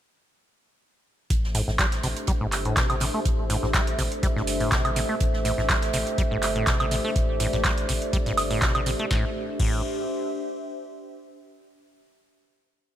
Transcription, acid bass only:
0, 0, Header, 1, 2, 480
1, 0, Start_track
1, 0, Key_signature, 0, "minor"
1, 0, Tempo, 487805
1, 1282, Time_signature, 4, 2, 24, 8
1, 12751, End_track
2, 0, Start_track
2, 0, Title_t, "Acid bass"
2, 0, Program_c, 0, 38
2, 1521, Note_on_c, 0, 45, 100
2, 1592, Note_off_c, 0, 45, 0
2, 1651, Note_on_c, 0, 45, 77
2, 1687, Note_off_c, 0, 45, 0
2, 1761, Note_on_c, 0, 55, 83
2, 1832, Note_off_c, 0, 55, 0
2, 2002, Note_on_c, 0, 48, 98
2, 2044, Note_off_c, 0, 48, 0
2, 2241, Note_on_c, 0, 55, 106
2, 2284, Note_off_c, 0, 55, 0
2, 2370, Note_on_c, 0, 45, 99
2, 2432, Note_off_c, 0, 45, 0
2, 2610, Note_on_c, 0, 45, 79
2, 2722, Note_on_c, 0, 48, 100
2, 2737, Note_off_c, 0, 45, 0
2, 2828, Note_off_c, 0, 48, 0
2, 2850, Note_on_c, 0, 48, 75
2, 2912, Note_off_c, 0, 48, 0
2, 2962, Note_on_c, 0, 48, 102
2, 3005, Note_off_c, 0, 48, 0
2, 3091, Note_on_c, 0, 57, 75
2, 3152, Note_off_c, 0, 57, 0
2, 3442, Note_on_c, 0, 45, 103
2, 3513, Note_off_c, 0, 45, 0
2, 3571, Note_on_c, 0, 45, 80
2, 3608, Note_off_c, 0, 45, 0
2, 3682, Note_on_c, 0, 55, 79
2, 3753, Note_off_c, 0, 55, 0
2, 3922, Note_on_c, 0, 48, 101
2, 3965, Note_off_c, 0, 48, 0
2, 4162, Note_on_c, 0, 55, 105
2, 4205, Note_off_c, 0, 55, 0
2, 4291, Note_on_c, 0, 45, 104
2, 4352, Note_off_c, 0, 45, 0
2, 4531, Note_on_c, 0, 45, 74
2, 4642, Note_on_c, 0, 48, 105
2, 4657, Note_off_c, 0, 45, 0
2, 4748, Note_off_c, 0, 48, 0
2, 4771, Note_on_c, 0, 48, 80
2, 4832, Note_off_c, 0, 48, 0
2, 4883, Note_on_c, 0, 48, 103
2, 4925, Note_off_c, 0, 48, 0
2, 5010, Note_on_c, 0, 57, 75
2, 5072, Note_off_c, 0, 57, 0
2, 5362, Note_on_c, 0, 45, 99
2, 5433, Note_off_c, 0, 45, 0
2, 5491, Note_on_c, 0, 45, 78
2, 5528, Note_off_c, 0, 45, 0
2, 5602, Note_on_c, 0, 55, 79
2, 5673, Note_off_c, 0, 55, 0
2, 5842, Note_on_c, 0, 48, 103
2, 5885, Note_off_c, 0, 48, 0
2, 6083, Note_on_c, 0, 55, 105
2, 6125, Note_off_c, 0, 55, 0
2, 6211, Note_on_c, 0, 45, 100
2, 6272, Note_off_c, 0, 45, 0
2, 6451, Note_on_c, 0, 45, 73
2, 6563, Note_on_c, 0, 48, 101
2, 6578, Note_off_c, 0, 45, 0
2, 6669, Note_off_c, 0, 48, 0
2, 6691, Note_on_c, 0, 48, 78
2, 6752, Note_off_c, 0, 48, 0
2, 6803, Note_on_c, 0, 48, 101
2, 6845, Note_off_c, 0, 48, 0
2, 6932, Note_on_c, 0, 57, 74
2, 6992, Note_off_c, 0, 57, 0
2, 7282, Note_on_c, 0, 45, 101
2, 7353, Note_off_c, 0, 45, 0
2, 7411, Note_on_c, 0, 45, 83
2, 7448, Note_off_c, 0, 45, 0
2, 7521, Note_on_c, 0, 55, 78
2, 7592, Note_off_c, 0, 55, 0
2, 7762, Note_on_c, 0, 48, 103
2, 7804, Note_off_c, 0, 48, 0
2, 8001, Note_on_c, 0, 55, 103
2, 8044, Note_off_c, 0, 55, 0
2, 8130, Note_on_c, 0, 45, 103
2, 8192, Note_off_c, 0, 45, 0
2, 8370, Note_on_c, 0, 45, 78
2, 8482, Note_on_c, 0, 48, 103
2, 8496, Note_off_c, 0, 45, 0
2, 8588, Note_off_c, 0, 48, 0
2, 8611, Note_on_c, 0, 48, 82
2, 8672, Note_off_c, 0, 48, 0
2, 8723, Note_on_c, 0, 48, 101
2, 8765, Note_off_c, 0, 48, 0
2, 8851, Note_on_c, 0, 57, 78
2, 8912, Note_off_c, 0, 57, 0
2, 8964, Note_on_c, 0, 45, 96
2, 9103, Note_off_c, 0, 45, 0
2, 9443, Note_on_c, 0, 45, 95
2, 9666, Note_off_c, 0, 45, 0
2, 12751, End_track
0, 0, End_of_file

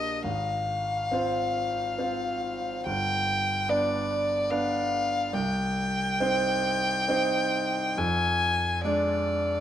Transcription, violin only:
0, 0, Header, 1, 2, 480
1, 0, Start_track
1, 0, Key_signature, -3, "minor"
1, 0, Tempo, 875912
1, 132, Time_signature, 3, 2, 24, 8
1, 1568, Tempo, 824176
1, 3008, Tempo, 877193
1, 5344, End_track
2, 0, Start_track
2, 0, Title_t, "Violin"
2, 0, Program_c, 0, 40
2, 0, Note_on_c, 0, 75, 59
2, 128, Note_on_c, 0, 77, 59
2, 136, Note_off_c, 0, 75, 0
2, 1563, Note_off_c, 0, 77, 0
2, 1567, Note_on_c, 0, 79, 76
2, 2053, Note_on_c, 0, 74, 66
2, 2061, Note_off_c, 0, 79, 0
2, 2527, Note_on_c, 0, 77, 74
2, 2536, Note_off_c, 0, 74, 0
2, 3010, Note_on_c, 0, 79, 71
2, 3019, Note_off_c, 0, 77, 0
2, 4456, Note_on_c, 0, 80, 76
2, 4465, Note_off_c, 0, 79, 0
2, 4926, Note_off_c, 0, 80, 0
2, 4929, Note_on_c, 0, 74, 62
2, 5344, Note_off_c, 0, 74, 0
2, 5344, End_track
0, 0, End_of_file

